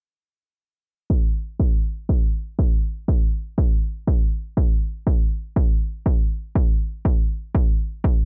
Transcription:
1.10 kick loud
1.60 kick loud
2.09 kick loud
2.59 kick loud
3.08 kick loud
3.58 kick loud
4.07 kick loud
4.57 kick loud
5.07 kick loud
5.56 kick loud
6.06 kick loud
6.55 kick loud
7.05 kick loud
7.55 kick loud
8.04 kick loud

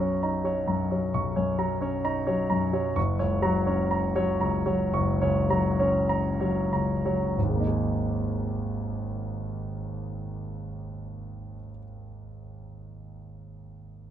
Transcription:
0.00 1.09 B1 medium
0.00 0.67 F#2 soft
0.00 0.13 F#3 soft
0.00 0.35 C#4 soft
0.00 0.45 C#5 soft
0.00 0.12 A#5 soft
0.00 1.14 C#6 soft
0.23 0.58 D#4 soft
0.23 0.58 A#5 soft
0.44 0.80 F#3 soft
0.44 0.81 C#5 soft
0.67 1.03 F#2 soft
0.67 1.03 A#5 soft
0.91 1.27 F#3 soft
0.91 1.27 C#5 soft
1.14 2.93 B1 soft
1.14 1.50 C#6 soft
1.36 1.72 F#2 soft
1.36 1.72 C#5 soft
1.58 1.95 F#3 soft
1.58 1.95 A#5 soft
1.81 2.18 C#4 soft
1.81 2.18 C#5 medium
2.04 2.41 D#4 soft
2.04 2.41 A#5 medium
2.27 2.64 F#3 soft
2.27 2.64 C#5 medium
2.50 2.87 F#2 soft
2.50 2.87 A#5 soft
2.73 2.96 F#3 soft
2.73 2.96 C#5 soft
2.96 4.89 F#1 medium
2.96 3.34 C#6 medium
3.19 3.57 C#2 soft
3.19 3.57 C#5 soft
3.42 3.81 F#3 medium
3.42 3.81 A#5 medium
3.66 4.06 C#4 soft
3.66 4.05 C#5 soft
3.91 4.30 A#5 medium
4.16 4.56 F#3 soft
4.16 4.56 C#5 medium
4.41 4.82 C#2 soft
4.41 4.82 A#5 medium
4.66 5.09 F#3 soft
4.66 5.09 C#5 soft
4.93 7.33 F#1 medium
4.93 5.37 C#6 medium
5.22 5.67 C#2 soft
5.22 5.66 C#5 medium
5.50 5.96 F#3 soft
5.50 5.97 A#5 soft
5.80 6.27 C#4 medium
5.80 6.27 C#5 soft
6.09 6.59 A#5 medium
6.41 6.93 F#3 soft
6.41 6.93 C#5 soft
6.73 7.25 C#2 soft
6.73 7.25 A#5 soft
7.05 7.37 F#3 soft
7.05 7.37 C#5 soft
7.37 11.54 G#1 soft
7.43 11.59 D#2 soft
7.49 11.65 G#3 soft
7.55 11.71 A#3 soft
7.60 11.76 D#4 soft
7.67 11.83 G#4 soft

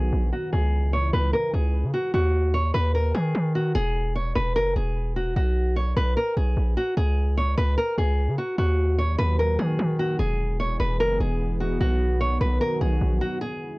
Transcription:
0.00 0.12 B1 loud
0.00 0.51 D#3 medium
0.00 0.51 F#3 medium
0.00 0.50 B3 medium
0.00 0.51 F#4 medium
0.00 0.30 G#4 medium
0.13 0.32 A#1 loud
0.33 0.50 F#4 medium
0.53 1.11 C#2 loud
0.53 2.12 C#3 medium
0.53 2.12 E3 medium
0.53 2.12 G#3 medium
0.53 2.12 E4 medium
0.53 0.91 G#4 medium
0.93 1.11 C#5 medium
1.13 1.33 C#2 loud
1.13 1.31 B4 medium
1.33 1.51 A#4 medium
1.54 1.85 C#2 loud
1.54 1.91 G#4 medium
1.84 1.93 C#3 loud
1.94 2.11 F#4 medium
2.14 2.72 D#2 loud
2.14 2.52 F#4 medium
2.54 2.71 C#5 medium
2.74 3.13 D#2 loud
2.74 2.92 B4 medium
2.95 3.12 A#4 medium
3.15 3.34 D#3 loud
3.15 3.52 G#4 medium
3.35 3.73 D#3 loud
3.55 3.72 F#4 medium
3.75 4.33 E1 loud
3.75 4.13 G#4 loud
4.15 4.33 C#5 medium
4.35 4.57 E1 loud
4.35 4.53 B4 medium
4.56 4.75 F#1 loud
4.56 4.73 A#4 medium
4.76 5.34 E1 loud
4.76 5.14 G#4 medium
5.16 5.33 F#4 medium
5.36 5.94 B1 loud
5.36 5.74 F#4 loud
5.76 5.94 C#5 medium
5.96 6.16 B1 loud
5.96 6.14 B4 medium
6.17 6.34 A#4 medium
6.37 6.56 B1 loud
6.37 6.75 G#4 medium
6.57 6.76 A#1 loud
6.77 6.94 F#4 medium
6.97 7.55 C#2 loud
6.97 7.35 G#4 medium
7.37 7.55 C#5 medium
7.58 7.77 C#2 loud
7.58 7.75 B4 medium
7.78 7.95 A#4 medium
7.98 8.29 C#2 loud
7.98 8.36 G#4 medium
8.28 8.38 C#3 loud
8.38 8.55 F#4 medium
8.58 9.16 D#2 loud
8.58 10.18 D#3 medium
8.58 10.18 F#3 medium
8.58 10.18 A#3 medium
8.58 8.96 F#4 loud
8.58 10.18 F#4 loud
8.98 9.16 C#5 medium
9.18 9.57 D#2 loud
9.18 9.36 B4 loud
9.39 9.56 A#4 medium
9.59 9.78 D#3 loud
9.59 9.97 G#4 medium
9.79 10.18 D#3 loud
9.99 10.17 F#4 medium
10.19 10.77 E1 loud
10.19 11.79 E3 medium
10.19 11.79 G#3 medium
10.19 13.38 B3 medium
10.19 10.57 G#4 loud
10.19 11.79 G#4 medium
10.60 10.77 C#5 medium
10.80 11.01 E1 loud
10.80 10.97 B4 medium
11.00 11.19 F#1 loud
11.00 11.17 A#4 medium
11.20 11.78 E1 loud
11.20 11.58 G#4 medium
11.60 11.78 F#4 medium
11.80 12.38 B1 loud
11.80 13.40 D#3 medium
11.80 13.40 F#3 medium
11.80 13.40 F#4 medium
11.80 12.18 F#4 loud
12.21 12.38 C#5 medium
12.41 12.60 B1 loud
12.41 12.58 B4 medium
12.61 12.78 A#4 medium
12.81 13.00 B1 loud
12.81 13.19 G#4 medium
13.01 13.21 A#1 loud
13.21 13.39 F#4 medium
13.41 13.79 C#3 medium
13.41 13.79 E3 medium
13.41 13.79 G#3 medium
13.41 13.79 E4 medium
13.41 13.79 G#4 medium

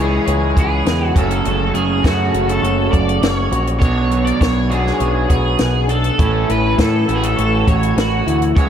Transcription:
0.00 0.18 C#2 medium
0.00 0.57 C#3 medium
0.00 1.14 C#3 medium
0.00 1.15 E3 medium
0.00 0.87 G#3 medium
0.00 1.15 G#3 medium
0.00 1.16 C#4 medium
0.00 1.14 E4 medium
0.00 1.15 E4 medium
0.00 0.55 G#4 medium
0.26 0.52 C#2 medium
0.26 2.62 C#5 medium
0.26 closed hi-hat medium
0.56 0.82 C#2 medium
0.56 1.15 G#4 medium
0.56 kick medium
0.56 closed hi-hat medium
0.60 1.06 G#4 medium
0.85 1.11 E2 medium
0.85 1.15 B3 medium
0.85 snare loud
0.85 closed hi-hat medium
1.06 1.19 F#4 medium
1.15 1.41 F#1 medium
1.15 2.02 F#2 medium
1.15 2.02 C#3 medium
1.15 1.44 F#3 medium
1.15 2.04 F#3 medium
1.15 2.03 A3 medium
1.15 2.05 C#4 loud
1.15 2.05 F#4 loud
1.15 kick loud
1.15 closed hi-hat medium
1.19 1.74 A4 loud
1.31 closed hi-hat medium
1.45 1.71 F#1 medium
1.45 4.11 F#3 medium
1.45 closed hi-hat medium
1.74 2.00 F#1 medium
1.74 3.23 C#4 medium
1.74 2.05 G#4 medium
1.74 closed hi-hat medium
2.03 3.50 F#2 medium
2.03 2.29 F#2 medium
2.03 3.50 C#3 medium
2.03 3.81 F#3 medium
2.03 3.51 A3 medium
2.03 3.83 C#4 medium
2.03 3.52 F#4 medium
2.03 2.50 F#4 medium
2.03 3.83 F#4 medium
2.03 kick medium
2.03 snare loud
2.03 closed hi-hat medium
2.32 2.59 F#1 medium
2.32 2.91 A4 medium
2.32 closed hi-hat medium
2.49 2.91 A4 medium
2.49 closed hi-hat medium
2.62 2.88 F#1 medium
2.62 3.84 C#5 medium
2.62 closed hi-hat medium
2.91 3.18 F#1 medium
2.91 3.82 A4 medium
2.91 3.20 D5 medium
2.91 kick medium
2.91 closed hi-hat medium
3.09 closed hi-hat medium
3.22 3.47 F#1 medium
3.22 3.84 C#4 medium
3.22 3.64 C#5 loud
3.22 snare loud
3.22 closed hi-hat medium
3.52 3.81 A#1 medium
3.52 4.41 F#4 medium
3.52 closed hi-hat medium
3.67 closed hi-hat medium
3.80 4.31 B1 medium
3.80 5.30 B2 medium
3.80 4.69 B2 medium
3.80 4.72 F#3 medium
3.80 4.69 B3 medium
3.80 4.70 D4 medium
3.80 4.25 C#5 loud
3.80 kick loud
3.80 closed hi-hat medium
3.84 4.70 F#4 medium
4.11 5.60 F#3 medium
4.11 closed hi-hat medium
4.25 4.41 D5 medium
4.25 closed hi-hat medium
4.41 4.91 B1 medium
4.41 5.87 D4 medium
4.41 4.69 C#5 medium
4.41 kick medium
4.41 snare loud
4.41 closed hi-hat medium
4.70 6.18 B2 medium
4.70 6.18 F#3 medium
4.70 6.18 B3 medium
4.70 6.17 D4 medium
4.70 5.27 F#4 medium
4.70 6.17 F#4 medium
4.70 5.29 G#4 medium
4.70 closed hi-hat medium
4.87 snare soft
4.99 5.25 B1 medium
4.99 7.36 C#5 medium
4.99 closed hi-hat medium
5.29 5.55 B1 medium
5.29 6.18 F#4 medium
5.29 5.90 G#4 medium
5.29 kick medium
5.29 closed hi-hat medium
5.59 6.10 B1 medium
5.59 6.18 B3 medium
5.59 snare loud
5.59 closed hi-hat medium
5.88 6.18 D4 medium
5.88 6.51 A4 medium
5.88 closed hi-hat medium
6.04 closed hi-hat medium
6.18 6.44 A1 medium
6.18 7.06 A2 medium
6.18 7.09 E3 medium
6.18 7.67 A3 medium
6.18 7.06 A3 medium
6.18 7.08 C#4 medium
6.18 7.08 E4 medium
6.18 kick loud
6.18 closed hi-hat medium
6.48 6.74 A1 medium
6.48 6.76 E4 medium
6.48 6.77 B4 loud
6.48 closed hi-hat medium
6.77 7.03 A2 medium
6.77 8.25 E4 medium
6.77 kick medium
6.77 snare loud
6.77 closed hi-hat medium
6.81 7.15 A4 medium
7.07 7.33 A1 medium
7.07 8.55 A2 medium
7.07 8.55 E3 medium
7.07 8.55 A3 medium
7.07 8.57 C#4 medium
7.07 8.55 E4 medium
7.07 7.66 F#4 medium
7.07 closed hi-hat medium
7.16 7.23 G#4 medium
7.23 7.68 A4 medium
7.23 closed hi-hat medium
7.36 7.63 A1 medium
7.36 8.69 C#5 medium
7.36 closed hi-hat medium
7.67 7.92 A1 medium
7.67 8.56 F#4 medium
7.67 7.95 C#5 medium
7.67 kick medium
7.67 closed hi-hat medium
7.83 closed hi-hat medium
7.96 8.22 A1 medium
7.96 8.56 A3 medium
7.96 8.39 F#4 medium
7.96 snare loud
7.96 closed hi-hat medium
8.27 8.52 D2 medium
8.27 8.56 E4 medium
8.27 closed hi-hat medium
8.42 closed hi-hat medium
8.56 8.69 C#2 medium
8.56 8.69 C#3 medium
8.56 8.69 E3 medium
8.56 8.69 G#3 medium
8.56 8.69 C#4 medium
8.56 8.69 E4 medium
8.56 8.69 C#5 medium
8.56 kick loud
8.56 closed hi-hat medium

